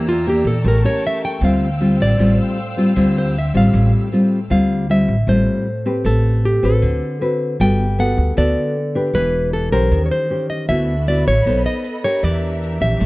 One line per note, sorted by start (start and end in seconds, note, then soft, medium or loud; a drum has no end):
0.00 0.41 E2 medium
0.00 0.63 E3 medium
0.00 0.12 A#3 medium
0.00 0.12 D4 medium
0.00 0.13 G4 soft
0.00 0.64 D5 medium
0.00 4.47 G5 medium
0.00 0.64 A#5 medium
0.00 0.64 E6 medium
0.07 0.26 F4 medium
0.07 shaker soft
0.26 0.52 A#3 medium
0.26 0.52 D4 medium
0.26 0.53 G4 medium
0.26 0.46 G4 medium
0.26 shaker medium
0.45 0.63 A#2 medium
0.45 0.65 A4 medium
0.45 shaker soft
0.64 0.82 A1 loud
0.64 1.40 A3 medium
0.64 0.76 C#4 medium
0.64 0.76 G4 medium
0.64 1.41 A#4 medium
0.64 0.76 A#4 medium
0.64 1.41 A5 medium
0.64 1.41 C#6 medium
0.64 shaker medium
0.68 0.85 A#4 medium
0.84 1.39 C#4 medium
0.84 1.39 G4 medium
0.84 1.39 A#4 medium
0.84 1.03 C#5 medium
0.84 shaker soft
1.03 1.24 E5 medium
1.03 shaker medium
1.23 1.42 G5 loud
1.23 shaker soft
1.40 1.95 D2 medium
1.40 2.17 D3 medium
1.40 1.67 G3 medium
1.40 1.67 C4 medium
1.40 1.67 F4 medium
1.40 4.47 C5 medium
1.40 4.47 F5 medium
1.40 4.47 E6 medium
1.40 shaker medium
1.45 1.97 F5 medium
1.61 shaker soft
1.80 2.16 G3 medium
1.80 2.16 C4 medium
1.80 2.16 F4 medium
1.80 shaker medium
2.00 2.18 A1 medium
2.00 2.37 D5 medium
2.00 shaker soft
2.19 2.37 A1 medium
2.19 2.94 A2 medium
2.19 2.57 G3 medium
2.19 2.57 C4 medium
2.19 2.58 F4 medium
2.19 shaker medium
2.39 shaker soft
2.58 shaker medium
2.77 2.93 G3 medium
2.77 2.93 C4 medium
2.77 2.94 F4 medium
2.77 shaker soft
2.96 3.50 D2 medium
2.96 3.71 D3 medium
2.96 3.35 G3 medium
2.96 3.35 C4 medium
2.96 3.35 F4 medium
2.96 shaker medium
3.16 3.36 C5 medium
3.16 shaker soft
3.35 3.55 E5 medium
3.35 shaker medium
3.54 3.72 A1 medium
3.54 4.09 G3 medium
3.54 4.09 C4 medium
3.54 4.09 F4 medium
3.54 3.91 F5 medium
3.54 shaker soft
3.73 3.91 A1 loud
3.73 4.49 A2 medium
3.73 shaker medium
3.93 shaker soft
4.12 4.38 G3 medium
4.12 4.38 C4 medium
4.12 4.39 F4 medium
4.12 shaker medium
4.32 shaker soft
4.50 5.04 D2 medium
4.50 5.26 D3 soft
4.50 4.86 G3 medium
4.50 4.86 C4 soft
4.50 4.86 F4 medium
4.50 4.90 F5 medium
4.89 5.14 G3 medium
4.89 5.14 C4 soft
4.89 5.14 F4 medium
4.89 5.30 E5 medium
5.08 5.26 A1 medium
5.27 5.45 A1 medium
5.27 6.03 A2 medium
5.27 5.66 G3 medium
5.27 5.66 C4 soft
5.27 5.66 F4 medium
5.27 6.06 C5 medium
5.86 6.60 C4 medium
5.86 6.60 G4 medium
5.86 6.60 B4 medium
6.04 6.59 A1 medium
6.04 6.80 A3 soft
6.04 6.45 A4 medium
6.45 6.64 G4 medium
6.63 6.81 A1 medium
6.63 7.18 C4 medium
6.63 7.18 F#4 medium
6.63 7.18 A4 medium
6.63 7.18 B4 medium
6.82 7.00 D2 medium
6.82 7.57 D3 medium
7.21 7.58 C4 medium
7.21 7.58 F#4 soft
7.21 7.58 B4 medium
7.60 8.14 G1 medium
7.60 8.35 G3 soft
7.60 7.85 B3 soft
7.60 7.85 F#4 medium
7.60 7.85 A4 medium
7.60 7.99 G5 loud
7.99 8.34 B3 medium
7.99 8.34 F#4 soft
7.99 8.34 A4 medium
7.99 8.38 F#5 loud
8.18 8.35 D2 medium
8.37 8.55 D2 medium
8.37 9.12 D3 medium
8.37 8.75 B3 medium
8.37 8.75 F#4 medium
8.37 8.76 A4 medium
8.37 9.11 D5 medium
8.95 9.69 D4 medium
8.95 9.69 G4 medium
8.95 9.69 B4 medium
9.14 9.68 E1 medium
9.14 9.90 E3 medium
9.14 9.53 B4 medium
9.53 9.72 A4 medium
9.72 9.90 B1 medium
9.72 10.27 C#4 medium
9.72 10.27 G4 medium
9.72 10.05 A#4 medium
9.72 10.27 C5 medium
9.91 10.09 D#2 medium
9.91 10.67 D#3 soft
10.06 10.11 C#5 medium
10.11 10.49 C5 medium
10.30 10.67 C#4 soft
10.30 10.67 G4 soft
10.30 10.68 C5 medium
10.50 10.67 D#5 medium
10.68 11.22 D2 medium
10.68 11.44 D3 medium
10.68 10.94 B3 medium
10.68 11.45 D4 medium
10.68 10.94 E4 medium
10.68 11.45 F#4 medium
10.68 10.94 F#4 medium
10.68 11.45 E5 medium
10.68 11.08 E5 medium
10.68 12.21 B5 medium
10.68 shaker medium
10.87 shaker soft
11.07 11.32 B3 soft
11.07 11.32 E4 medium
11.07 11.33 F#4 medium
11.07 11.27 D5 medium
11.07 shaker medium
11.26 11.45 A1 medium
11.26 11.63 C#5 medium
11.26 shaker soft
11.45 11.64 B1 medium
11.45 12.21 B3 medium
11.45 11.85 D#4 soft
11.45 12.22 A4 medium
11.45 11.85 A4 soft
11.45 11.85 C5 medium
11.45 12.22 D#5 medium
11.45 shaker medium
11.65 12.01 D#5 medium
11.65 shaker soft
11.84 shaker medium
12.03 12.78 D4 medium
12.03 12.78 G4 medium
12.03 12.78 A#4 medium
12.03 12.24 C#5 medium
12.03 shaker soft
12.23 12.77 E2 medium
12.23 12.99 E3 medium
12.23 13.00 D4 medium
12.23 13.06 G4 medium
12.23 13.00 A#4 medium
12.23 12.81 D5 medium
12.23 13.00 E5 medium
12.23 shaker medium
12.42 shaker soft
12.62 shaker medium
12.81 12.99 A#1 medium
12.81 13.06 C#4 medium
12.81 13.06 G4 medium
12.81 13.06 E5 medium
12.81 shaker soft
13.00 13.06 A1 medium
13.00 13.06 A3 medium
13.00 13.06 C#5 medium
13.00 shaker medium